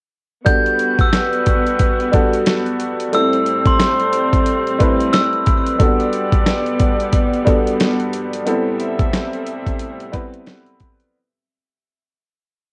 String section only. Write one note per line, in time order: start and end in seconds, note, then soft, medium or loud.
0.46 3.11 G2 medium
0.46 3.11 B3 medium
0.46 3.11 F#4 medium
3.15 5.78 A2 medium
3.15 5.78 G3 medium
3.15 5.78 C4 medium
5.81 8.44 G2 medium
5.81 8.44 G3 medium
5.81 8.44 B3 medium
8.46 11.11 A2 medium
8.46 11.11 C3 medium
8.46 11.11 G3 medium